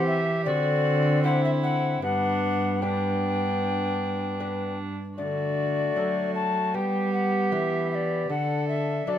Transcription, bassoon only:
Already playing: C4
0.47 C4
2.03 B3
2.82 B3
5.18 A3
6.75 B3
8.30 D4
9.08 D4

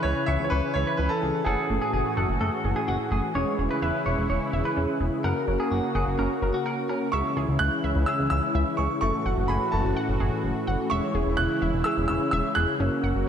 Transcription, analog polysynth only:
Already playing: E3 C#4 E4 G#5
1.46 A3 C#4 F#4 G#4
3.35 G#3 C#4 E4 G#4
5.24 A#3 C#4 F#4 A#4
7.13 G#3 C#4 E4 G#4 C#5
9.02 A3 C#4 F#4 A4
10.91 G#3 C#4 E4 G#4 C#5
12.80 A#3 C#4 F#4 A#4 C#5

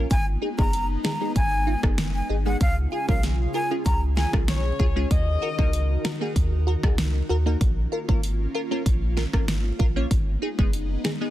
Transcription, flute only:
0.11 G#5
0.59 A#5
1.05 A#5
1.36 G#5
2.15 G#5
2.46 F#5
2.61 F5
2.92 G#5
3.09 F5
3.55 G#5
3.86 A#5
4.17 G#5

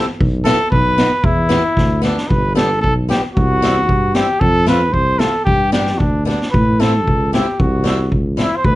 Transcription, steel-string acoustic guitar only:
0.45 B3 E4 F#4
0.98 B3 D#4 F#4
1.49 B3 E4 G4
2.02 B3 E4 G4
2.55 B3 D4 G4
3.09 B3 D4 G4
3.62 G3 C4 E4
4.15 G3 C4 E4
4.66 A3 C4 F4
5.19 A3 C4 F4
5.72 G3 B3 D4
6.25 G3 B3 D4
6.80 A3 C4 E4
7.33 A3 C4 E4
7.84 G3 C4 E4
8.37 G3 C4 E4

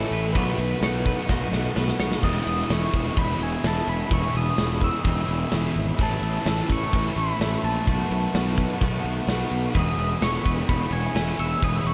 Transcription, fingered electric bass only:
0.11 A1
0.35 B1
0.58 B1
0.81 B1
1.30 B1
1.52 B1
1.76 B1
1.99 B1
2.23 E1
2.47 E1
2.70 E1
2.94 E1
3.17 E1
3.39 E1
3.64 E1
3.87 E1
4.11 E1
4.34 E1
4.58 E1
5.05 E1
5.29 E1
5.52 E1
5.76 G#1
5.99 A1
6.22 A1
6.46 A1
6.69 A1
6.94 A1
7.16 A1
7.39 A1
7.64 A#1
7.87 B1
8.11 B1
8.34 B1
8.81 B1
9.04 B1
9.27 B1
9.51 B1
9.75 E1
9.98 E1
10.22 E1
10.46 E1
10.69 E1
10.91 E1
11.15 E1
11.39 E1
11.63 E1
11.85 E1

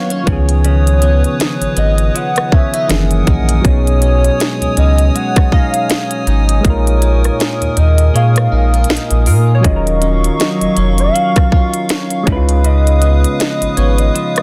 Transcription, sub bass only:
0.27 C#2
1.61 G#1
1.77 G#1
2.90 F#1
3.27 A#1
3.65 B1
4.61 C#2
4.77 C#2
6.27 G#1
6.64 A#1
7.61 D#2
7.77 D#2
8.15 A#2
8.52 A#1
8.90 A#1
9.11 A#1
9.27 A#2
9.64 D#1
10.61 F1
10.77 F1
12.27 C#2
13.62 G#1
13.77 G#1

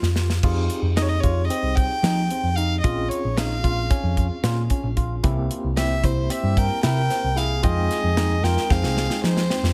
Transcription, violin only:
0.96 D#5
1.02 C#5
1.09 D#5
1.20 C#5
1.48 D#5
1.76 G5
2.56 F5
2.81 D#5
3.09 C#5
3.37 F5
5.78 E5
6.05 C5
6.31 E5
6.58 G5
6.84 G5
7.37 F5
7.64 D#5
8.44 G5
8.72 F5
9.24 C5

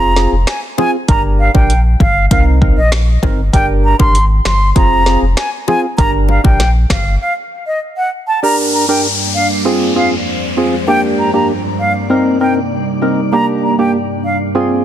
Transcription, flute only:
Already playing: A#5
0.48 G#5
0.78 G#5
1.09 A#5
1.40 F5
1.55 G5
2.01 F5
2.31 F5
2.77 D#5
3.54 G5
3.84 A#5
4.00 C6
4.46 C6
4.76 A#5
5.37 G#5
5.68 G#5
5.98 A#5
6.29 F5
6.45 G5
6.90 F5
7.21 F5
7.67 D#5
7.97 F#5
8.28 A5
8.43 A#5
8.74 A#5
8.89 G5
9.35 F5
9.96 F5
10.88 G5
11.19 A#5
11.34 A#5
11.80 F5
12.41 G5
13.33 A#5
13.63 A#5
13.79 G5
14.25 F5

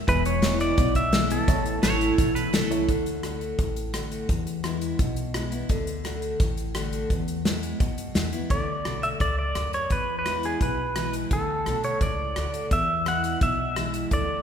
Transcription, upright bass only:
0.08 E1
0.78 B1
1.48 A1
1.83 A1
2.18 B1
2.54 C#2
2.89 D2
3.59 A1
4.29 E2
4.99 B1
5.70 D2
6.40 A1
7.10 E2
7.80 F#2
8.15 E2
8.50 D2
8.85 B1
9.20 C#2
9.55 D2
9.91 E2
10.61 B1
11.31 D2
11.66 B1
12.01 C#2
12.36 D2
12.71 E2
13.41 B1
14.11 D2

